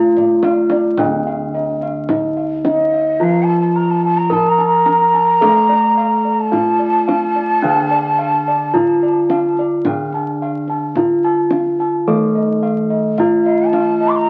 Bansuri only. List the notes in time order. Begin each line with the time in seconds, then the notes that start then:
2.73 D#5
3.23 F5
3.43 A5
3.61 A5
3.76 A#5
3.91 A5
4.05 A5
4.18 A#5
4.33 A5
4.49 A#5
4.66 A#5
6.32 A#5
6.40 A5
13.42 F5
13.67 A5
14.09 D6
14.17 A#5